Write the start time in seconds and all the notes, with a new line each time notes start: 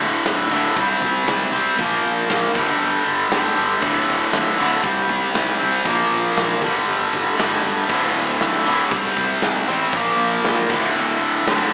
Already playing: D2 A2 D3
0.01 D1
0.25 D1, snare, open hi-hat
0.51 D1 D2 A2 D3
0.76 C2 C3 G3 C4, kick, open hi-hat
1.02 C2, kick
1.27 C2, snare, open hi-hat
1.52 C2 C3 G3 C4
1.77 A#1 A#2 F3 A#3, kick, open hi-hat
2.05 A#1
2.29 A#1, snare, open hi-hat
2.54 G1 G2 D3 G3, kick, crash
2.81 G1
3.07 G1
3.31 G1 G2 D3 G3, snare, open hi-hat
3.58 G1
3.81 D1 D2 A2 D3, kick, crash
4.08 D1
4.33 D1, snare, open hi-hat
4.58 D1 D2 A2 D3
4.82 C2 C3 G3 C4, kick, open hi-hat
5.09 C2, kick
5.35 C2, snare, open hi-hat
5.59 C2 C3 G3 C4
5.84 A#1 A#2 F3 A#3, kick, open hi-hat
6.11 A#1
6.36 A#1, snare, open hi-hat
6.62 G1 G2 D3 G3, kick
6.88 G1, open hi-hat
7.13 G1, kick
7.37 G1 G2 D3 G3, snare, open hi-hat
7.65 G1
7.87 D1 D2 A2 D3, kick, crash
8.15 D1
8.40 D1, snare, open hi-hat
8.65 D1 D2 A2 D3
8.90 C2 C3 G3 C4, kick, open hi-hat
9.17 C2, kick
9.42 C2, snare, open hi-hat
9.68 A1 C3 G3 C4
9.93 A#1 A#2 F3 A#3, kick, open hi-hat
10.20 A#1
10.44 A#1, snare, open hi-hat
10.70 D1 D2 A2 D3, kick, crash
10.95 D1
11.21 D1
11.46 D1 D2 A2 D3, snare, open hi-hat